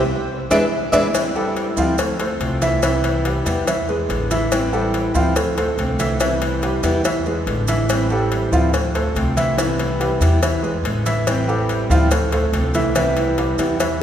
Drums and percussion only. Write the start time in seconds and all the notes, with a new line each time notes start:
0.51 cowbell, maracas
0.93 cowbell, maracas
1.15 cowbell, maracas
1.35 maracas
1.56 cowbell, maracas
1.77 maracas
1.98 cowbell, maracas
2.20 cowbell, maracas
2.40 cowbell, maracas
2.62 cowbell, maracas
2.83 cowbell, maracas
3.04 cowbell, maracas
3.25 cowbell, maracas
3.46 cowbell, maracas
3.67 cowbell, maracas
3.88 maracas
4.10 cowbell, maracas
4.31 cowbell, maracas
4.52 cowbell, maracas
4.73 maracas
4.94 cowbell, maracas
5.15 maracas
5.36 cowbell, maracas
5.57 cowbell, maracas
5.78 cowbell, maracas
5.99 cowbell, maracas
6.20 cowbell, maracas
6.41 cowbell, maracas
6.62 cowbell, maracas
6.83 cowbell, maracas
7.05 cowbell, maracas
7.26 maracas
7.47 cowbell, maracas
7.67 cowbell, maracas
7.89 cowbell, maracas
8.10 maracas
8.31 cowbell, maracas
8.53 maracas
8.74 cowbell, maracas
8.95 cowbell, maracas
9.16 cowbell, maracas
9.37 cowbell, maracas
9.58 cowbell, maracas
9.79 cowbell, maracas
10.01 cowbell, maracas
10.21 cowbell, maracas
10.43 cowbell, maracas
10.64 maracas
10.85 cowbell, maracas
11.06 cowbell, maracas
11.27 cowbell, maracas
11.49 maracas
11.69 cowbell, maracas
11.91 maracas
12.11 cowbell, maracas
12.32 cowbell, maracas
12.53 cowbell, maracas
12.74 cowbell, maracas
12.95 cowbell, maracas
13.17 cowbell, maracas
13.38 cowbell, maracas
13.58 cowbell, maracas
13.80 cowbell, maracas